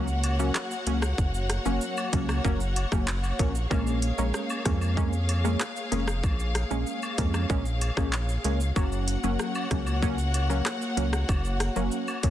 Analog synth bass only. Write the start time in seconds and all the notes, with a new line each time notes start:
Already playing: C#2
0.87 C#2
1.18 F#1
1.66 F#1
2.13 C#2
2.45 F#1
2.92 F#1
3.39 A#1
3.71 A#1
4.18 A#1
4.66 F2
5.92 F1
6.23 A#1
6.71 A#1
7.18 F2
7.50 A#1
7.97 A#1
8.45 C#2
8.76 F#1
9.24 F#1
9.71 C#2
10.97 C#2
11.29 F#1
11.76 F#1
12.24 C#2